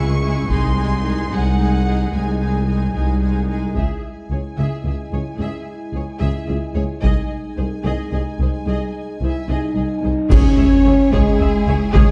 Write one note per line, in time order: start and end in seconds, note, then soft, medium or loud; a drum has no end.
0.00 0.39 C#2 medium
0.00 0.40 C#2 medium
0.00 0.19 G#3 soft
0.00 0.44 G#3 soft
0.00 0.19 E4 soft
0.00 0.44 E4 soft
0.00 0.21 G#4 soft
0.00 0.21 G#5 soft
0.00 0.48 C#6 medium
0.20 0.47 G#3 soft
0.20 0.48 E4 soft
0.20 0.48 G#4 soft
0.20 0.47 G#5 soft
0.48 1.21 C2 medium
0.48 0.74 G#3 soft
0.48 3.45 G#3 medium
0.48 0.74 D#4 soft
0.48 3.45 D#4 medium
0.48 0.75 G#4 medium
0.48 0.75 G#5 medium
0.48 1.30 C6 medium
0.48 taiko medium
0.75 1.02 G#3 soft
0.75 1.02 D#4 soft
0.75 1.03 G#4 soft
0.75 1.03 G#5 soft
1.03 1.29 G#3 soft
1.03 1.29 D#4 soft
1.03 1.30 G#4 soft
1.03 1.31 G#5 soft
1.30 2.03 C2 medium
1.30 1.55 G#3 soft
1.30 1.55 D#4 soft
1.30 1.58 G#4 soft
1.30 2.14 F#5 medium
1.30 1.59 G#5 soft
1.56 1.84 G#3 soft
1.56 1.84 D#4 soft
1.60 1.86 G#4 soft
1.60 1.86 G#5 soft
1.85 2.10 G#3 soft
1.85 2.10 D#4 soft
1.85 2.12 G#4 soft
1.85 2.12 G#5 soft
2.11 2.85 C2 soft
2.11 2.37 G#3 soft
2.11 2.37 D#4 soft
2.11 2.39 G#4 soft
2.11 3.49 G#5 medium
2.11 2.40 G#5 soft
2.38 2.65 G#3 soft
2.38 2.65 D#4 soft
2.38 2.65 G#4 soft
2.38 2.66 G#5 soft
2.66 2.93 G#3 soft
2.66 2.92 D#4 soft
2.66 2.92 G#4 soft
2.66 2.92 G#5 soft
2.93 3.66 C2 soft
2.93 3.20 G#3 soft
2.93 3.20 D#4 soft
2.93 3.20 G#4 soft
2.93 3.21 G#5 soft
3.21 3.47 G#3 soft
3.21 3.47 D#4 soft
3.21 3.47 G#4 soft
3.21 3.48 G#5 soft
3.48 3.75 G#3 soft
3.48 3.75 D#4 soft
3.48 3.75 G#4 soft
3.48 3.76 G#5 soft
3.75 3.83 C#2 soft
3.75 3.84 C#2 soft
3.75 6.99 G#3 soft
3.75 6.99 E4 soft
3.75 4.01 G#4 soft
3.75 4.01 E5 soft
3.75 7.00 G#5 soft
3.75 taiko soft
4.30 4.38 C#2 soft
4.30 4.39 G#4 soft
4.30 4.40 C#5 soft
4.57 4.65 C#2 soft
4.57 4.84 G#4 soft
4.57 4.83 E5 soft
4.84 4.92 C#2 soft
4.84 4.94 G#4 soft
4.84 4.94 E5 soft
5.12 5.20 C#2 soft
5.12 5.20 G#4 soft
5.12 5.21 C#5 soft
5.38 5.47 C#2 soft
5.38 5.64 G#4 soft
5.38 5.66 E5 soft
5.93 6.01 C#2 soft
5.93 6.02 C#2 soft
5.93 6.01 G#4 soft
5.93 6.04 C#5 soft
6.19 6.28 C#2 soft
6.19 6.29 C#2 medium
6.19 6.46 G#4 soft
6.19 6.46 E5 medium
6.47 6.55 C#2 soft
6.47 6.57 C#2 soft
6.47 6.56 G#4 soft
6.47 6.56 E5 soft
6.74 6.83 C#2 soft
6.74 6.83 G#4 soft
6.74 6.82 C#5 soft
7.02 7.11 C2 medium
7.02 7.11 C2 soft
7.02 9.17 G#3 medium
7.02 9.21 D#4 soft
7.02 7.28 G#4 medium
7.02 7.28 D#5 medium
7.02 10.07 G#5 soft
7.02 taiko soft
7.56 7.65 C2 soft
7.56 7.66 C2 soft
7.56 7.65 G#4 soft
7.56 7.64 C5 soft
7.84 7.92 C2 medium
7.84 7.93 C2 medium
7.84 8.10 G#4 medium
7.84 8.10 D#5 medium
8.12 8.20 C2 soft
8.12 8.20 G#4 soft
8.12 8.21 D#5 soft
8.39 8.47 C2 soft
8.39 8.48 G#4 soft
8.39 8.50 C5 soft
8.66 8.74 C2 soft
8.66 8.92 G#4 soft
8.66 8.93 D#5 soft
9.21 9.29 C2 soft
9.21 9.47 E4 medium
9.21 9.31 G#4 soft
9.21 9.31 C5 soft
9.21 9.48 E5 soft
9.48 9.56 C2 soft
9.48 9.57 C2 soft
9.48 10.29 D#4 medium
9.48 9.75 G#4 soft
9.48 9.74 D#5 medium
9.75 9.83 C2 soft
9.75 9.85 C2 soft
9.75 9.84 G#4 soft
9.75 9.83 D#5 soft
10.02 10.10 C2 soft
10.02 10.12 C2 soft
10.02 10.11 G#4 soft
10.02 10.12 C5 soft
10.30 10.38 C#2 medium
10.30 10.39 C#2 medium
10.30 11.08 C#3 medium
10.30 12.11 G#3 medium
10.30 11.13 C#4 medium
10.30 12.11 E4 medium
10.30 10.56 G#4 medium
10.30 12.11 G#4 medium
10.30 11.12 C#5 medium
10.30 10.57 C#5 medium
10.30 12.11 G#5 medium
10.30 concert bass drum medium
10.30 taiko loud
10.30 crash medium
10.57 10.65 C#2 medium
10.57 10.66 C#2 soft
10.57 10.66 G#4 soft
10.57 10.66 E5 medium
10.57 10.68 G#5 soft
10.85 10.93 C#2 soft
10.85 10.94 C#2 medium
10.85 10.94 G#4 medium
10.85 10.94 C#5 medium
10.85 10.94 E5 medium
11.12 11.20 C#2 medium
11.12 11.77 G#3 medium
11.12 11.94 G#4 medium
11.12 11.38 G#4 medium
11.12 11.38 C#5 medium
11.12 taiko medium
11.39 11.47 C#2 medium
11.39 11.48 C#2 medium
11.39 11.49 G#4 medium
11.39 11.48 E5 medium
11.39 11.48 G#5 medium
11.66 11.75 C#2 medium
11.66 11.76 G#4 medium
11.66 11.76 C#5 medium
11.66 11.74 E5 medium
11.94 12.02 C#2 medium
11.94 12.11 G#3 medium
11.94 12.11 G#4 medium
11.94 12.11 C#5 medium
11.94 taiko loud